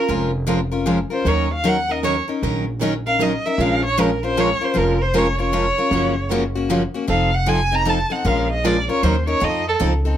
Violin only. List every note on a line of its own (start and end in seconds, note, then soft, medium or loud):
1.13 1.29 C5 medium
1.28 1.51 C#5 medium
1.54 1.70 F5 medium
1.68 1.93 F#5 loud
1.91 2.03 D#5 medium
2.04 2.19 C#5 medium
3.07 3.24 F5 medium
3.22 3.47 D#5 medium
3.45 3.63 E5 medium
3.61 3.85 F5 medium
3.85 4.01 C#5 loud
4.00 4.23 A#4 medium
4.26 4.41 C5 medium
4.40 4.66 C#5 medium
4.64 4.79 C5 medium
4.77 5.03 A#4 medium
5.01 5.19 C5 loud
5.18 5.40 C#5 medium
5.40 6.28 C#5 medium
7.10 7.36 F5 medium
7.35 7.50 F#5 loud
7.49 7.76 G#5 loud
7.75 7.90 A#5 loud
7.89 8.13 A5 medium
8.11 8.29 F#5 medium
8.27 8.51 F5 medium
8.51 8.68 D#5 medium
8.66 8.90 D5 medium
8.91 9.04 C#5 medium
9.03 9.28 C5 medium
9.29 9.46 C#5 medium
9.44 9.68 D#5 medium
9.69 9.77 A4 medium